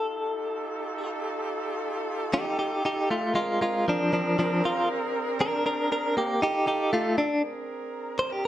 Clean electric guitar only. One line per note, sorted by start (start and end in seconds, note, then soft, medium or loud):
0.00 1.10 A4 medium
2.34 2.57 D#4 medium
2.34 2.58 G4 loud
2.59 2.82 D#4 medium
2.59 2.83 G4 medium
2.85 3.08 D#4 medium
2.85 3.09 G4 medium
3.10 3.33 A3 medium
3.10 3.34 F4 medium
3.35 3.58 G#3 medium
3.35 3.59 F4 medium
3.61 3.84 G#3 medium
3.61 3.85 F4 medium
3.88 4.10 F3 medium
3.88 4.12 D4 loud
4.13 4.35 F3 medium
4.13 4.37 D4 medium
4.39 4.61 F3 medium
4.39 4.62 D4 medium
4.65 4.88 F4 medium
5.41 5.64 D4 medium
5.41 5.64 A#4 medium
5.66 5.88 D4 medium
5.66 5.89 A#4 medium
5.92 6.14 D4 medium
5.92 6.15 A#4 medium
6.17 6.39 A#3 medium
6.17 6.41 G4 medium
6.42 6.64 D#4 medium
6.42 6.66 G4 medium
6.67 6.90 D#4 medium
6.67 6.91 G4 medium
6.93 7.15 A3 medium
6.93 7.16 F4 medium
7.18 7.41 D4 loud
8.19 8.31 C5 medium
8.32 8.43 G4 medium